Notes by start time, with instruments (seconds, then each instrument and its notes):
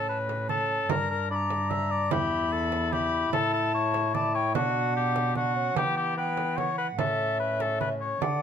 Already playing: cello A2, bassoon C#4, recorder A5
0.09 oboe B4
0.29 frame drum
0.48 bassoon C#4, oboe A4, recorder A5, frame drum
0.89 cello G2, bassoon D4, oboe A#4, recorder A#5, frame drum
1.11 oboe A#4
1.30 bassoon D4, oboe D5, recorder B5
1.35 recorder A#5
1.50 frame drum
1.70 oboe E5, frame drum
1.91 oboe D5
2.11 cello E2, bassoon E4, oboe G4, recorder B5, frame drum
2.52 oboe A4
2.72 frame drum
2.92 bassoon E4, oboe G4, recorder B5, frame drum
3.33 cello A2, bassoon E4, oboe A4, recorder A5, frame drum
3.53 oboe A4
3.74 oboe C#5
3.94 frame drum
4.14 bassoon E4, oboe D5, recorder A5, frame drum
4.34 oboe C#5, recorder G5
4.55 cello B2, bassoon D4, oboe F#4, recorder F#5, frame drum
4.96 oboe G4
5.16 frame drum
5.35 bassoon D4, oboe F#4, recorder F#5, frame drum
5.56 bassoon C#4
5.76 cello E3, bassoon B3, oboe G4, recorder G5, frame drum
5.97 oboe G4
6.17 bassoon B3, oboe B4, recorder G5
6.37 frame drum
6.57 oboe C#5, recorder F#5, frame drum
6.78 oboe B4
6.98 cello A2, bassoon C#4, oboe A4, recorder E5, frame drum
7.39 oboe B4
7.60 oboe A4, frame drum
7.80 oboe B4, frame drum
8.01 oboe C#5
8.21 cello D3, bassoon D4, oboe D5, recorder F#5, frame drum